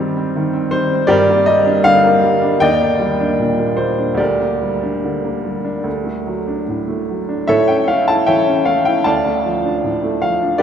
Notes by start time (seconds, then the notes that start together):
Already playing: G2 D#3 C4 G4 C5 D#5
0.00 G3
0.17 C4
0.36 D#3
0.53 C4
0.71 G3 C5
0.91 C4
1.07 G2 G4 A#4 D5
1.28 A#3
1.46 G3 D#5
1.66 D4
1.84 D3 F5
2.04 A#3
2.23 G3
2.42 D4
2.60 D#2 D5 D#5 G5
2.80 A#3
2.99 G3
3.20 D4
3.40 A#2
3.58 A#3
3.77 G3 C5
3.99 D4
4.14 D2 G4 D5
4.19 A#4
4.40 A#3
4.61 G3
4.83 D4
5.04 D3
5.24 A#3
5.44 G3
5.65 D4
5.84 D2
6.05 A3
6.27 F#3
6.47 D4
6.68 A2
6.88 A3
7.09 F#3
7.29 D4
7.47 A2 A4 C#5 E5
7.68 C#4 G5
7.88 A3 F5
8.08 E4 A5
8.26 E3 C#5 E5 G5
8.46 C#4
8.65 A3 F5
8.85 E4 G5
9.04 D2 D5 F5 A5
9.26 A3
9.46 F3
9.65 D4
9.84 A2
10.03 A3
10.22 F3 F5
10.43 D4
10.58 G4 D5